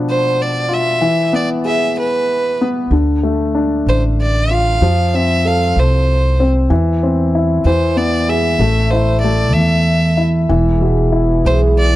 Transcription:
Already playing: B2 F3 D4
0.10 C5
0.42 D5
0.69 F4
0.73 E5
1.01 E3
1.33 B3 D5
1.65 G#4 E5
1.99 B4
2.61 B3
2.91 D2 D3
3.23 A3
3.55 D4
3.86 A1 C5
4.21 D5
4.51 F4 F5
4.81 F2 F3
5.14 C4 E5
5.45 A4 F5
5.76 C2 C5
6.40 C4
6.70 E2 E3
7.03 C4
7.35 E4
7.65 E2 E3 C5
7.97 B3 D5
8.29 G#4 E5
8.59 A1 A3
8.90 E4 C5
9.20 A3 D5
9.53 E2 E5
10.17 E4
10.49 E1 E3 E4 G#4
10.81 B2
11.12 E4
11.45 B1 C5
11.79 D5

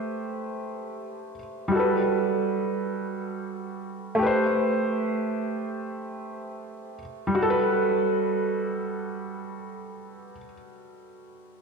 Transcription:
Already playing: A3 G4 B4 C5
1.68 G3 F#4
1.76 A4 B4
4.15 A3 G4
4.23 B4 C5
7.27 G3
7.35 F#4
7.42 A4
7.50 B4

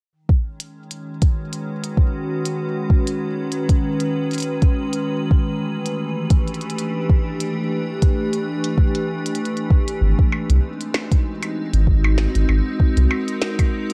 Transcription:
0.12 D#3
0.23 G#3
0.28 C#4, kick
0.60 closed hi-hat
0.91 F#4, closed hi-hat
1.13 B4
1.22 kick, closed hi-hat
1.53 closed hi-hat
1.84 closed hi-hat
1.97 kick
2.46 closed hi-hat
2.90 kick
3.07 closed hi-hat
3.52 closed hi-hat
3.69 kick, closed hi-hat
4.00 closed hi-hat
4.31 closed hi-hat
4.33 closed hi-hat
4.38 closed hi-hat
4.40 closed hi-hat
4.42 closed hi-hat
4.62 kick, closed hi-hat
4.93 closed hi-hat
5.07 E3
5.23 A3
5.31 kick
5.86 G4, closed hi-hat
6.09 D4
6.30 kick, closed hi-hat
6.48 closed hi-hat
6.54 closed hi-hat
6.61 closed hi-hat
6.70 closed hi-hat
6.79 closed hi-hat
7.10 kick
7.40 closed hi-hat
8.02 kick, closed hi-hat
8.33 closed hi-hat
8.64 closed hi-hat
8.78 kick
8.95 closed hi-hat
9.26 closed hi-hat
9.35 closed hi-hat
9.45 closed hi-hat
9.57 closed hi-hat
9.70 kick
9.88 closed hi-hat
10.01 G#1 G#3
10.19 D#4, kick
10.29 C4, percussion blips
10.50 C2, closed hi-hat
10.81 closed hi-hat
10.89 F#4
10.94 snare, percussion blips
11.12 kick, closed hi-hat
11.43 closed hi-hat, percussion blips
11.73 G#1, closed hi-hat
11.87 kick
11.97 A#4
12.04 percussion blips
12.18 snare
12.35 G#1, closed hi-hat
12.49 G#1, percussion blips
12.80 kick
12.97 C2, closed hi-hat
13.11 percussion blips
13.28 closed hi-hat
13.42 snare
13.59 kick, closed hi-hat, percussion blips
13.90 closed hi-hat

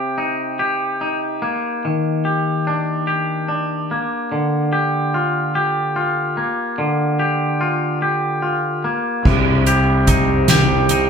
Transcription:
Already playing: C3 G4
0.18 D#4
0.59 G4
1.01 D#4
1.42 A#3
1.85 D#3
2.25 G4
2.67 D4
3.07 G4
3.48 D4
3.91 A#3
4.32 D3
4.73 G4
5.14 F4
5.55 G4
5.96 F4
6.37 A#3
6.78 D3
7.19 G4
7.61 F4
8.02 G4
8.42 F4
8.84 A#3
9.25 C2 C3 G4 C5 G5 A#5, kick, crash
9.66 G4, closed hi-hat
10.07 D#4, kick, closed hi-hat
10.48 G4, snare, closed hi-hat
10.89 D#4, closed hi-hat

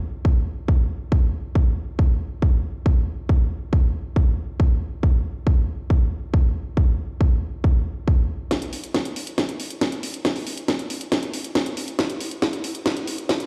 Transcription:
0.25 kick
0.68 kick
1.12 kick
1.55 kick
1.99 kick
2.42 kick
2.86 kick
3.29 kick
3.73 kick
4.16 kick
4.60 kick
5.03 kick
5.47 kick
5.90 kick
6.34 kick
6.77 kick
7.21 kick
7.64 kick
8.08 kick
8.51 kick, snare, closed hi-hat
8.62 closed hi-hat
8.73 open hi-hat
8.84 closed hi-hat
8.94 kick, snare, closed hi-hat
9.05 closed hi-hat
9.16 open hi-hat
9.27 closed hi-hat
9.38 kick, snare, closed hi-hat
9.49 closed hi-hat
9.60 open hi-hat
9.71 closed hi-hat
9.81 kick, snare, closed hi-hat
9.92 closed hi-hat
10.03 open hi-hat
10.14 closed hi-hat
10.25 kick, snare, closed hi-hat
10.36 open hi-hat
10.47 open hi-hat
10.57 closed hi-hat
10.68 kick, snare, closed hi-hat
10.79 closed hi-hat
10.90 open hi-hat
11.01 closed hi-hat
11.12 kick, snare, closed hi-hat
11.23 closed hi-hat
11.34 open hi-hat
11.44 closed hi-hat
11.55 kick, snare, closed hi-hat
11.66 closed hi-hat
11.77 open hi-hat
11.88 closed hi-hat
11.99 kick, snare, closed hi-hat
12.10 closed hi-hat
12.20 open hi-hat
12.31 closed hi-hat
12.42 kick, snare, closed hi-hat
12.53 closed hi-hat
12.64 open hi-hat
12.75 closed hi-hat
12.86 kick, snare, closed hi-hat
12.97 closed hi-hat
13.07 open hi-hat
13.18 closed hi-hat
13.29 kick, snare, closed hi-hat
13.40 closed hi-hat

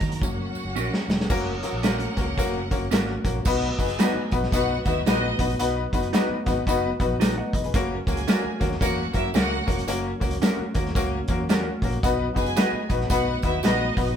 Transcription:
Already playing: F#3 A#3 D#4 F#4 A#4 A#5
0.00 D#3, kick, snare, closed hi-hat, tambourine
0.12 closed hi-hat
0.21 F#1 F#3 A#3 C#4 F#4 F#5, kick, tambourine
0.55 muted fingered electric bass stroke, tambourine
0.65 F#1
0.75 A#1 C#4 F#4 A#4, tambourine
0.94 snare
1.08 E1, snare, tambourine
1.21 snare
1.29 F#1 F#3 A#3 C#4 F#4 A#4 F#5, kick, crash, tambourine
1.63 A#3 C#4 F#4 A#4, closed hi-hat, tambourine
1.73 A#1
1.83 A#3 C#4 F#4 A#4, snare, closed hi-hat, tambourine
2.00 closed hi-hat
2.17 C#2 A#3 C#4 F#4 A#4, kick, snare, closed hi-hat, tambourine
2.37 F#1 A#3 C#4 F#4 A#4, kick, closed hi-hat, tambourine
2.71 A#3 C#4 F#4 A#4, kick, closed hi-hat, tambourine
2.81 F#1
2.91 G#1 A#3 C#4 F#4 A#4, snare, closed hi-hat, tambourine
3.24 A#1 A#3 C#4 F#4 A#4, kick, closed hi-hat, tambourine
3.45 B1 F#3 B3 D#4 F#4 B4, kick, crash, tambourine
3.77 F#1 B3 D#4 F#4 G#4 B4 G#5, kick, closed hi-hat, tambourine
3.88 closed hi-hat
3.99 B3 D#4 F#4 B4, snare, closed hi-hat, tambourine
4.15 muted fingered electric bass stroke
4.31 A#1 B3 D#4 F#4 B4, kick, closed hi-hat, tambourine
4.43 snare
4.52 B1 B3 D#4 F#4 B4 F#5, kick, closed hi-hat, tambourine
4.85 D#2 B3 D#4 E4 F#4 B4 E5, kick, closed hi-hat, tambourine
5.06 A#1 B3 D#4 F#4 B4 D#5, snare, closed hi-hat, tambourine
5.39 A#1 B3 D#4 F#4 B4, kick, closed hi-hat, tambourine
5.50 closed hi-hat
5.59 B1 B3 D#4 F#4 B4, closed hi-hat, tambourine
5.92 F#1 B3 D#4 F#4 B4, kick, closed hi-hat, tambourine
6.03 closed hi-hat
6.13 B3 D#4 F#4 B4, snare, closed hi-hat, tambourine
6.29 muted fingered electric bass stroke
6.46 G#1 B3 D#4 F#4 B4, kick, snare, closed hi-hat, tambourine
6.67 F#1 B3 D#4 F#4 B4, kick, closed hi-hat, tambourine
7.00 A#1 B3 D#4 F#4 B4, kick, closed hi-hat, tambourine
7.20 D#4 F#4 B4, snare, closed hi-hat, tambourine
7.38 D#5 F#5
7.53 E1 B4 D#5, kick, closed hi-hat, tambourine
7.64 G#4 B4, closed hi-hat
7.74 F#1 F#3 A#3 C#4 F#4 A#4, kick, closed hi-hat, tambourine
8.07 C#2 A#3 C#4 F#4 G#4 A#4 G#5, kick, closed hi-hat, tambourine
8.17 closed hi-hat
8.27 A#3 C#4 F#4 A#4, snare, closed hi-hat, tambourine
8.45 muted fingered electric bass stroke
8.60 D#2 A#3 C#4 F#4 A#4, kick, snare, closed hi-hat, tambourine
8.72 snare
8.80 E2 A#3 C#4 F#4 A#4 F#5, kick, closed hi-hat, tambourine
9.13 F#2 A#3 C#4 E4 F#4 A#4 E5, kick, closed hi-hat, tambourine
9.34 C#2 A#3 C#4 F#4 A#4 F#5, snare, closed hi-hat, tambourine
9.66 E1 A#3 C#4 F#4 A#4, kick, closed hi-hat, tambourine
9.78 closed hi-hat
9.87 F#1 A#3 C#4 F#4 A#4, closed hi-hat, tambourine
10.20 C#2 A#3 C#4 F#4 A#4, kick, closed hi-hat, tambourine
10.31 closed hi-hat
10.42 A#3 C#4 F#4 A#4, snare, closed hi-hat, tambourine
10.59 muted fingered electric bass stroke
10.74 D#2 A#3 C#4 F#4 A#4, kick, closed hi-hat, tambourine
10.86 snare
10.95 C#2 A#3 C#4 F#4 A#4, kick, closed hi-hat, tambourine
11.28 E2 A#3 C#4 F#4 A#4, kick, closed hi-hat, tambourine
11.49 A#3 C#4 F#4 A#4, snare, closed hi-hat, tambourine
11.82 A#1 A#3 C#4 F#4 A#4, kick, open hi-hat, tambourine
11.93 closed hi-hat
12.03 B1 B3 D#4 F#4 B4, kick, closed hi-hat, tambourine
12.35 F#1 B3 D#4 F#4 G#4 B4 G#5, kick, closed hi-hat, tambourine
12.46 closed hi-hat
12.56 B3 D#4 F#4 B4 D#5, snare, closed hi-hat, tambourine
12.73 muted fingered electric bass stroke
12.89 A#1 B3 D#4 F#4 B4, kick, closed hi-hat, tambourine
13.01 snare
13.10 B1 B3 D#4 F#4 B4 F#5, kick, closed hi-hat, tambourine
13.42 D#2 B3 D#4 E4 F#4 B4 E5, kick, closed hi-hat, tambourine
13.63 A#1 B3 D#4 F#4 B4 D#5, snare, closed hi-hat, tambourine
13.97 A#1 B3 D#4 F#4 B4, kick, open hi-hat, tambourine
14.08 closed hi-hat

